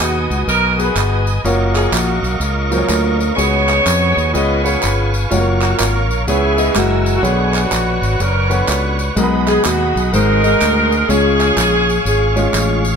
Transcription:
Already playing: B2 B3 D#4 F#4 G#4 B4 D#5 G#5 D#6
0.00 D#2, clap, tambourine
0.30 C#2, tambourine
0.48 B1 D#4 F#4 A#4, tambourine
0.78 B3 D#4 F#4 G#4 A#4 B4, tambourine
0.85 B4
0.96 G1, clap, tambourine
1.27 tambourine
1.44 F#1 A#3 F4 F#4 A#4 C#5 F5 C#6, tambourine
1.75 G#4, clap, tambourine
1.92 A#1 A#3 C#4 F#4, clap, tambourine
2.23 B1, tambourine
2.40 C#2 C#4 F4 A#4, tambourine
2.70 F#3 A#3 F4 C5, tambourine
2.78 C#5
2.89 D2, clap, tambourine
3.20 tambourine
3.35 C#2 C#3 B3 F#4 G#4 B4 C#5 G#5, tambourine
3.69 clap, tambourine
3.86 F2, clap, tambourine
4.17 D#2, tambourine
4.33 C#2 C#3 B3 F4 G#4 B4 C#5 D#5 F5 G#5, tambourine
4.64 B3 F4 G#4 C#5, tambourine
4.83 G1, clap, tambourine
5.14 tambourine
5.30 F#1 G#3 F4 F#4 A#4 C#5, tambourine
5.37 A#3
5.62 F#4, clap, tambourine
5.78 G#1 C#4 F4 A#4, clap, tambourine
6.10 A#1, tambourine
6.26 C#2 C#3 B3 E4 G#4 B4 C#5 E5 G#5 C#6, tambourine
6.56 B3 E4 G#4 D#5, tambourine
6.74 F#1 G#3 A#3 C#4 E4 F#4 A#4 E6, clap, tambourine
6.78 F#5
7.06 tambourine
7.16 F#4
7.22 B1 B2 D3 B3 C#4 D4 F#4 G#4 B4 C#5 C#6, tambourine
7.54 clap, tambourine
7.63 C#4 D4 F#4
7.72 A#1, clap, tambourine
8.02 G#1, tambourine
8.20 F#1 C#4 D4 A#4, tambourine
8.50 D3 B3 D4 F#4 B4 C#5, tambourine
8.68 C#2, clap, tambourine
8.99 tambourine
9.16 B1 B2 G#3 D#4 F#4 G#4 A#4 D#5 B5, tambourine
9.22 B4
9.48 G#4, clap, tambourine
9.64 D#2 D#4 F#4, clap, tambourine
9.96 B1, tambourine
10.12 G#1 G#2 G#3 D#4 F#4 G#4 A#4 C5 D#5 C6, tambourine
10.43 G#3 D#4 F#4 G#4, tambourine
10.50 A#4
10.62 D2, clap, tambourine
10.92 tambourine
11.09 C#2 C#3 G#3 C#4 F4 G#4 C#5 F5 C#6, tambourine
11.41 clap, tambourine
11.57 A#1, clap, tambourine
11.89 tambourine
12.05 G#1 C#4 F4 G#4, tambourine
12.35 G#3 C#4 F4 C#5, tambourine
12.53 A1, clap, tambourine
12.85 tambourine

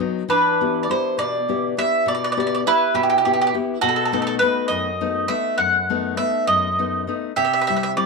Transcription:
0.00 F#3 B3 D#4
0.29 E3 D4 B4
0.61 B3 E4 G4
0.83 D5
0.89 B3 E4 G4 C5
1.18 B2 D5
1.49 B3 E4 G4
1.77 B3 E4 G4 E5
2.06 B2 D5
2.15 D5
2.24 D5
2.32 D5
2.37 B3 E4 G4 D5
2.47 D5
2.55 D5
2.66 B3 E4 G4 B4
2.94 B2 G4
3.03 G4
3.10 G4
3.18 G4
3.25 B3 E4 G4
3.34 G4
3.42 G4
3.47 G4
3.54 B3 E4 G4
3.81 B2 F#4 A4
3.89 A4
3.96 A4
4.05 A4
4.12 A3 B3 D#4 A4
4.22 A4
4.27 A4
4.39 A3 B3 D#4 B4
4.68 F#2 D#5
5.01 A3 B3 D#4
5.28 A3 B3 D#4 E5
5.58 F#2 F#5
5.90 A3 B3 D#4
6.17 A3 B3 D#4 E5
6.47 F#2 D#5
6.79 A3 B3 D#4
7.07 A3 B3 D#4
7.36 C3 G4 E5
7.45 E5
7.53 E5
7.61 E5
7.67 G3 C4 E4 E5
7.76 E5
7.83 E5
7.97 G3 C4 E4 D5

